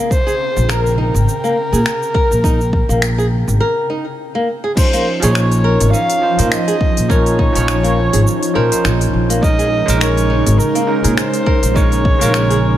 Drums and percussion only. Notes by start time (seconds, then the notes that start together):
0.11 kick, shaker
0.28 shaker
0.57 shaker
0.69 finger snap, shaker
0.86 shaker
1.16 shaker
1.29 shaker
1.45 shaker
1.74 shaker
1.86 finger snap, shaker
2.03 shaker
2.15 kick
2.32 shaker
2.44 kick, shaker
2.61 shaker
2.73 kick
2.90 shaker
3.02 finger snap, shaker
3.19 shaker
3.48 shaker
4.77 kick, crash, shaker
4.93 open hi-hat, shaker
5.22 open hi-hat, shaker
5.35 finger snap, shaker
5.51 open hi-hat, shaker
5.80 open hi-hat, shaker
5.94 shaker
6.10 open hi-hat, shaker
6.39 open hi-hat, shaker
6.52 finger snap, shaker
6.68 open hi-hat, shaker
6.81 kick
6.97 open hi-hat, shaker
7.10 kick, shaker
7.26 open hi-hat, shaker
7.39 kick
7.55 open hi-hat, shaker
7.68 finger snap, shaker
7.84 open hi-hat, shaker
8.13 open hi-hat, shaker
8.27 shaker
8.43 open hi-hat, shaker
8.72 open hi-hat, shaker
8.85 finger snap, shaker
9.01 open hi-hat, shaker
9.30 open hi-hat, shaker
9.43 kick, shaker
9.59 open hi-hat, shaker
9.88 open hi-hat, shaker
10.01 finger snap, shaker
10.17 open hi-hat, shaker
10.46 open hi-hat, shaker
10.60 shaker
10.75 open hi-hat, shaker
11.04 open hi-hat, shaker
11.17 finger snap, shaker
11.34 open hi-hat, shaker
11.47 kick
11.63 open hi-hat, shaker
11.76 kick, shaker
11.92 open hi-hat, shaker
12.05 kick
12.21 open hi-hat, shaker
12.34 finger snap, shaker
12.51 open hi-hat, shaker